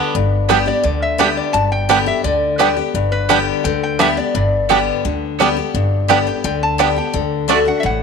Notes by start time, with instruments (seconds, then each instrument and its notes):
Already playing: five-string banjo D3 B3 D4, steel-string acoustic guitar D3 G3 B3 G4
0.15 upright bass G1, steel-string acoustic guitar G2
0.49 steel-string acoustic guitar D3 G3 B3 G4, five-string banjo G3 B3 D4, mandolin B3 G4 D5 G5
0.66 steel-string acoustic guitar B3 G4, resonator guitar played with a steel bar D5
0.84 upright bass D2, steel-string acoustic guitar D3, resonator guitar played with a steel bar D5
1.02 resonator guitar played with a steel bar E5
1.18 steel-string acoustic guitar D3 G3 B3 G4, five-string banjo G3 B3 D4, mandolin B3 G4 D5 G5
1.37 resonator guitar played with a steel bar D5
1.53 upright bass G1, steel-string acoustic guitar G2, resonator guitar played with a steel bar A5
1.72 resonator guitar played with a steel bar G5
1.89 steel-string acoustic guitar D3 G3 B3 G4, five-string banjo G3 B3 D4, mandolin B3 G4 D5 G5
2.06 steel-string acoustic guitar B3 G4, resonator guitar played with a steel bar E5
2.24 upright bass D2, steel-string acoustic guitar D3, resonator guitar played with a steel bar D5
2.58 steel-string acoustic guitar D3 G3 B3 G4, five-string banjo G3 B3 D4, mandolin B3 G4 D5 G5, resonator guitar played with a steel bar B4
2.77 steel-string acoustic guitar B3 G4
2.94 upright bass G1, steel-string acoustic guitar G2
3.12 resonator guitar played with a steel bar B4
3.29 steel-string acoustic guitar D3 G3 B3 G4, five-string banjo G3 B3 D4, mandolin B3 G4 D5 G5
3.64 upright bass D2, steel-string acoustic guitar D3, resonator guitar played with a steel bar G5
3.83 resonator guitar played with a steel bar G5
3.99 steel-string acoustic guitar D3 G3 B3 G4, five-string banjo G3 B3 D4, mandolin B3 G4 D5 G5, resonator guitar played with a steel bar E5
4.17 steel-string acoustic guitar B3 G4, resonator guitar played with a steel bar D5
4.34 upright bass G1, steel-string acoustic guitar G2, resonator guitar played with a steel bar D5
4.69 steel-string acoustic guitar D3 G3 B3 G4, five-string banjo G3 B3 D4, mandolin B3 G4 D5 G5
5.05 upright bass D2, steel-string acoustic guitar D3
5.39 steel-string acoustic guitar D3 G3 B3 G4, five-string banjo G3 B3 D4, mandolin B3 G4 D5 G5
5.57 steel-string acoustic guitar B3 G4
5.74 upright bass G1, steel-string acoustic guitar G2
6.08 steel-string acoustic guitar D3 G3 B3 G4, five-string banjo G3 B3 D4, mandolin B3 G4 D5 G5
6.27 steel-string acoustic guitar B3 G4, resonator guitar played with a steel bar G5
6.44 upright bass D2, steel-string acoustic guitar D3, resonator guitar played with a steel bar G5
6.63 resonator guitar played with a steel bar A5
6.78 steel-string acoustic guitar D3 G3 B3 G4, five-string banjo G3 B3 D4, mandolin B3 G4 D5 G5
6.96 steel-string acoustic guitar B3 G4, resonator guitar played with a steel bar G5
7.14 upright bass D2, steel-string acoustic guitar D3
7.48 steel-string acoustic guitar D3 A3 D4 F#4, mandolin A3 F#4 D5 A5, five-string banjo A3 D4
7.65 steel-string acoustic guitar D4 F#4, resonator guitar played with a steel bar F#5
7.80 steel-string acoustic guitar A2, resonator guitar played with a steel bar E5
7.84 upright bass A1, resonator guitar played with a steel bar F#5